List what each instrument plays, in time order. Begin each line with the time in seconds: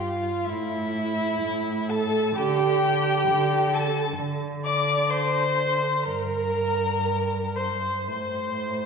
Already playing: cello G2, violin F4 F5
0.00 viola F4
0.45 cello A2, viola E4, violin E5
0.49 violin E4
1.41 cello A2
1.89 violin A4 A5, viola A4
2.36 cello D3, viola G4, violin G4 G5
3.28 cello D3
3.73 viola A4, violin A4 A5
4.18 cello D3
4.64 violin D5 D6, viola D5
5.09 violin C5 C6, viola C5
6.04 cello G2, viola A#4, violin A#4 A#5
7.55 viola C5, violin C5 C6
8.06 cello A2, viola C5, violin C5 C6